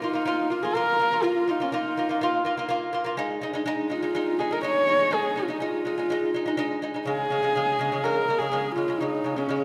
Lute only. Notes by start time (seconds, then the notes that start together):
0.02 A#3 F4
0.13 A#3 F4
0.25 A#3 F4
0.50 A#3 F4
0.63 A#3 F4
0.75 A#3 F4
0.99 A#3 F4
1.11 A#3 F4
1.22 A#3 F4
1.47 A#3 F4
1.60 A#3 F4
1.72 A#3 F4
1.97 A#3 F4
2.09 A#3 F4
2.21 A#3 F4
2.45 A#3 F4
2.57 A#3 F4
2.69 A#3 F4
2.93 A#3 F4
3.04 A#3 F4
3.17 G#3 D#4
3.41 G#3 D#4
3.53 G#3 D#4
3.66 G#3 D#4
3.90 G#3 D#4
4.02 G#3 D#4
4.15 G#3 D#4
4.39 G#3 D#4
4.51 G#3 D#4
4.63 G#3 D#4
4.87 G#3 D#4
4.99 G#3 D#4
5.11 G#3 D#4
5.36 G#3 D#4
5.48 G#3 D#4
5.60 G#3 D#4
5.85 G#3 D#4
5.98 G#3 D#4
6.10 G#3 D#4
6.34 G#3 D#4
6.46 G#3 D#4
6.57 G#3 D#4
6.82 G#3 D#4
6.94 G#3 D#4
7.05 C#3 G#3
7.30 C#3 G#3
7.43 C#3 G#3
7.55 C#3 G#3
7.79 C#3 G#3
7.92 C#3 G#3
8.04 C#3 G#3
8.28 C#3 G#3
8.40 C#3 G#3
8.52 C#3 G#3
8.76 C#3 G#3
8.88 C#3 G#3
9.01 C#3 G#3
9.24 C#3 G#3
9.36 C#3 G#3
9.49 C#3 G#3